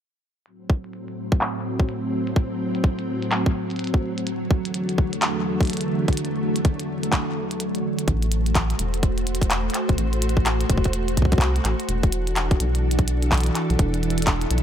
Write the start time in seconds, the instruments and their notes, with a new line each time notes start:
0.46 string machine A2 F#3 C4, closed hi-hat
0.70 kick
0.84 closed hi-hat
0.93 closed hi-hat
1.08 closed hi-hat
1.32 kick, closed hi-hat
1.41 clap, closed hi-hat
1.80 kick, closed hi-hat
1.89 closed hi-hat
2.27 closed hi-hat
2.36 kick, closed hi-hat
2.75 closed hi-hat
2.84 kick, closed hi-hat
2.99 closed hi-hat
3.22 closed hi-hat
3.32 clap, closed hi-hat
3.46 kick
3.70 closed hi-hat
3.76 closed hi-hat
3.79 closed hi-hat
3.84 closed hi-hat
3.87 closed hi-hat
3.94 kick
4.18 closed hi-hat
4.27 string machine E2 D3 A3, closed hi-hat
4.51 kick
4.65 closed hi-hat
4.74 closed hi-hat
4.89 closed hi-hat
4.98 kick
5.13 closed hi-hat
5.22 clap, closed hi-hat
5.61 kick, closed hi-hat
5.63 closed hi-hat
5.65 closed hi-hat
5.67 closed hi-hat
5.70 closed hi-hat
5.73 closed hi-hat
5.77 closed hi-hat
5.81 closed hi-hat
6.08 kick, closed hi-hat
6.13 closed hi-hat
6.17 closed hi-hat
6.25 closed hi-hat
6.56 closed hi-hat
6.65 kick, closed hi-hat
6.80 closed hi-hat
7.03 closed hi-hat
7.12 kick, clap, closed hi-hat
7.51 closed hi-hat
7.60 closed hi-hat
7.75 closed hi-hat
7.99 closed hi-hat
8.08 analog synth bass A1, string machine A3 F#4 C5, kick, closed hi-hat
8.22 closed hi-hat
8.32 closed hi-hat
8.46 closed hi-hat
8.55 kick, clap, closed hi-hat
8.70 closed hi-hat
8.79 analog synth bass E1, closed hi-hat
8.94 closed hi-hat
9.03 kick, closed hi-hat
9.18 closed hi-hat
9.27 closed hi-hat
9.35 closed hi-hat
9.42 kick, closed hi-hat
9.51 clap, closed hi-hat
9.70 closed hi-hat
9.74 clap, closed hi-hat
9.89 analog synth bass E1, kick, closed hi-hat
9.98 analog synth bass A1, closed hi-hat
10.13 closed hi-hat
10.22 closed hi-hat
10.29 closed hi-hat
10.37 kick
10.46 clap, closed hi-hat
10.61 closed hi-hat
10.70 analog synth bass E1, kick, closed hi-hat
10.78 kick
10.84 kick, closed hi-hat
10.93 closed hi-hat
11.08 closed hi-hat
11.17 analog synth bass C2, kick, closed hi-hat
11.22 kick
11.25 kick
11.32 kick, closed hi-hat
11.38 kick, clap, closed hi-hat
11.56 closed hi-hat
11.65 analog synth bass A1, clap, closed hi-hat
11.80 closed hi-hat
11.89 analog synth bass E1, string machine E3 D4 A4, closed hi-hat
12.03 kick, closed hi-hat
12.12 closed hi-hat
12.27 closed hi-hat
12.36 clap, closed hi-hat
12.51 kick, closed hi-hat
12.60 analog synth bass B1, closed hi-hat
12.75 closed hi-hat
12.91 closed hi-hat
12.99 kick, closed hi-hat
13.08 closed hi-hat
13.23 closed hi-hat
13.32 kick, clap, closed hi-hat
13.35 closed hi-hat
13.38 closed hi-hat
13.41 closed hi-hat
13.44 closed hi-hat
13.46 closed hi-hat
13.55 clap, closed hi-hat
13.70 analog synth bass B1, closed hi-hat
13.79 analog synth bass E1, string machine E4, kick, closed hi-hat
13.94 closed hi-hat
14.03 closed hi-hat
14.10 closed hi-hat
14.18 closed hi-hat
14.22 closed hi-hat
14.27 kick, clap, closed hi-hat
14.41 closed hi-hat
14.51 analog synth bass B1, closed hi-hat
14.58 closed hi-hat